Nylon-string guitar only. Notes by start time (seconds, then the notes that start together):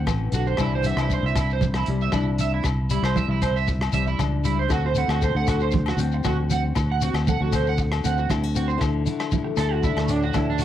Already playing: C4 A4
0.06 E3
0.32 D3
0.57 C3 E3 G3 D4 E4
0.83 G3
1.10 E3 E4
1.61 G2
1.89 G3
2.13 E3 D4
2.63 C3
2.91 G3
3.15 E3 E4
3.68 G2
3.93 G3
4.19 E3 D4
4.44 G3
4.68 D3 A3 C4 F#4
4.96 C4
5.21 A3 A4
5.72 A2
5.99 C4
6.26 A3 F#4
6.50 C4
6.75 D3
7.03 C4
7.27 A3 A4
7.77 A2
8.04 C4
8.30 E4, muted nylon-string guitar stroke
8.43 F#4
8.55 C4
8.78 D3 E4
9.06 E4
9.32 A3 E4
9.59 E4
9.85 D4
10.08 A2 E4
10.34 D4
10.59 E4